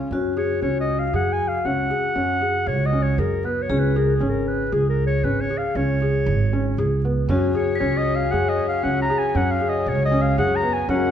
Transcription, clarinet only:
0.37 C#5
0.62 C#5
0.80 D#5
0.99 F5
1.15 F#5
1.32 G#5
1.48 F5
1.66 F#5
2.67 C#5
2.86 D#5
3.02 C#5
3.19 A#4
3.45 B4
3.62 C#5
3.79 B4
3.97 A#4
4.15 G#4
4.29 A#4
4.47 B4
4.73 G#4
4.89 A#4
5.07 C#5
5.24 B4
5.41 C#5
5.58 F5
5.76 C#5
7.56 C#5
7.80 C#5
7.97 D#5
8.16 F5
8.31 F#5
8.49 D#5
8.68 F5
8.83 F#5
9.02 A#5
9.18 G#5
9.36 F#5
9.51 F5
9.69 D#5
9.88 C#5
10.05 D#5
10.22 F5
10.38 F#5
10.56 A#5
10.73 G#5
10.90 F#5

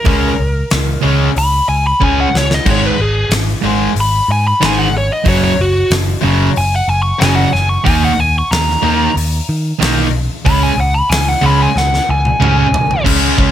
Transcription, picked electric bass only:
0.07 C#2
0.39 C#2
0.72 C#2
1.04 C#2
1.36 C#2
1.68 C#2
2.02 C#2
2.34 C#2
2.66 G#1
2.99 G#1
3.29 G#1
3.63 G#1
3.96 G#1
4.28 G#2
4.62 G#1
5.26 F#1
5.59 F#1
5.90 F#1
6.24 F#1
6.57 F#1
6.88 F#1
7.21 F#1
7.53 F#1
7.86 D#2
8.17 D#2
8.51 D#2
8.84 D#2
9.16 D#2
9.49 D#3
9.81 B1
10.46 C#2
10.78 C#2
11.10 C#2
11.43 C#2
11.76 C#2
12.09 C#2
12.41 C#2
12.72 C#2
13.06 C#2
13.38 C#2

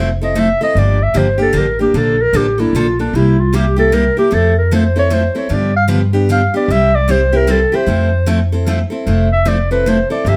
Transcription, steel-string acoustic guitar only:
0.22 C4 E4 A4
0.35 F3 A3 C4 E4 A4
0.61 C4 E4 A4
0.76 D3 F3 A#3 D4 G4
1.14 D3 F3 A#3 D4 G4
1.38 A#3 D4 G4
1.53 D3 F3 A#3 D4 G4
1.79 A#3 D4 G4
1.94 D3 F3 A#3 D4 A4
2.33 D3 F3 A#3 D4 A4
2.58 A#3 D4 A4
2.75 D3 F3 A#3 D4 A4
2.99 A#3 D4 A4
3.15 C3 G3 A#3 E4 G4
3.53 C3 G3 A#3 E4 G4
3.76 A#3 E4 G4
3.92 C3 G3 A#3 E4 G4
4.17 A#3 E4 G4
4.31 F3 A3 C4 E4 A4
4.71 F3 A3 C4 E4 A4
4.96 C4 E4 A4
5.10 F3 A3 C4 E4 A4
5.35 C4 E4 A4
5.49 D3 F3 B3 D4 G4
5.88 D3 F3 B3 D4 G4
6.13 B3 D4 G4
6.29 D3 F3 B3 D4 G4
6.54 B3 D4 G4
6.70 C3 G3 C4 E4 G4
7.08 C3 G3 C4 E4 G4
7.32 C4 E4 G4
7.47 C3 G3 C4 E4 G4
7.72 C4 E4 G4
7.87 F3 A3 C4 E4 A4
8.26 F3 A3 C4 E4 A4
8.52 C4 E4 A4
8.66 F3 A3 C4 E4 A4
8.90 C4 E4 A4
9.07 F3 A3 C4 E4 A4
9.45 F3 A3 C4 E4 A4
9.71 C4 E4 A4
9.86 F3 A3 C4 E4 A4
10.10 C4 E4 A4
10.26 D3 F3 A#3 D4 G4

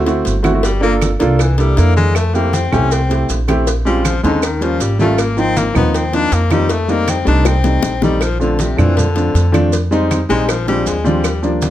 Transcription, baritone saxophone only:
0.64 G3
0.83 A#3
1.40 E3
1.59 G3
1.78 A#3
1.96 G#3
2.16 A3
2.34 A#3
2.54 C4
2.72 C#4
2.92 C4
3.86 G3
4.05 F3
4.24 D3
4.43 D#3
4.63 F3
4.82 G3
5.00 A3
5.19 A#3
5.39 C4
5.57 A#3
5.76 B3
5.95 C4
6.14 D4
6.33 A#3
6.52 G3
6.71 A3
6.90 A#3
7.10 C4
7.28 D4
7.47 C4
8.03 G3
8.22 F3
8.41 D3
8.59 C3
8.78 E3
8.97 D3
10.29 G#3
10.49 F3
10.68 G3
10.87 G#3
11.05 G3

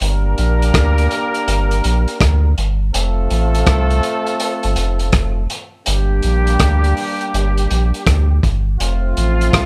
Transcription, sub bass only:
0.01 G1
0.39 A#1
0.75 D2
1.48 G1
1.85 A#1
2.21 D2
2.58 G1
2.95 F1
3.31 A1
3.67 C2
4.65 G1
4.77 F1
5.13 F1
5.88 G1
6.24 A#1
6.60 D2
7.34 G1
7.71 A#1
8.07 D2
8.44 G1
8.81 F1
9.17 A1
9.54 C2

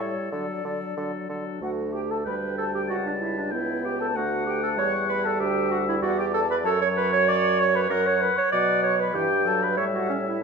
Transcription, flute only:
0.00 C#5
0.33 D5
1.63 F#5
1.94 G5
2.10 A5
2.27 B5
2.58 A5
2.75 G5
2.90 F#5
3.07 D5
3.23 E5
3.40 D5
3.54 E5
3.85 G5
4.00 A5
4.15 F#5
4.48 G5
4.63 A5
4.78 C#6
5.10 B5
5.24 A5
5.40 G5
5.71 F#5
5.88 E5
6.02 F#5
6.19 G5
6.33 A5
6.49 B5
6.63 A5
6.80 C#6
6.95 B5
7.10 C#6
7.27 D6
7.58 C#6
7.74 B5
7.89 A#5
8.05 C#6
8.21 B5
8.36 C#6
8.51 D6
8.83 C#6
9.00 B5
9.15 G5
9.47 A5
9.62 B5
9.78 C#6
9.95 F#5
10.11 C#5
10.27 E5

